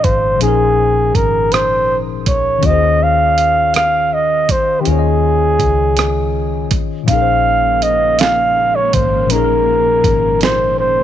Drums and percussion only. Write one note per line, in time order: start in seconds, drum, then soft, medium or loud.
0.04 kick medium
0.04 closed hi-hat medium
0.41 closed hi-hat medium
1.15 kick medium
1.15 closed hi-hat medium
1.52 cross-stick loud
1.52 closed hi-hat medium
2.26 kick medium
2.26 closed hi-hat medium
2.63 kick medium
2.63 closed hi-hat medium
3.38 closed hi-hat medium
3.74 cross-stick medium
3.74 closed hi-hat medium
4.49 kick medium
4.49 closed hi-hat medium
4.85 closed hi-hat medium
5.59 kick medium
5.59 closed hi-hat soft
5.97 cross-stick loud
5.97 closed hi-hat medium
6.71 kick medium
6.71 closed hi-hat medium
7.08 kick loud
7.08 closed hi-hat medium
7.82 closed hi-hat medium
8.19 snare medium
8.19 closed hi-hat medium
8.93 kick medium
8.93 closed hi-hat medium
9.30 closed hi-hat medium
10.04 kick medium
10.04 closed hi-hat medium
10.41 snare loud
10.41 closed hi-hat medium